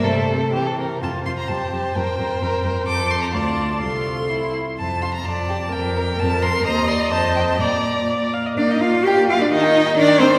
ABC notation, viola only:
X:1
M:2/4
L:1/16
Q:1/4=128
K:F
V:1 name="Viola"
A,4 E,2 z2 | c8- | c8- | c4 d4 |
A6 z2 | z4 d4 | B8 | [K:Bb] e4 c4 |
d4 d2 f e | B,4 B,4 | E,4 E,4 |]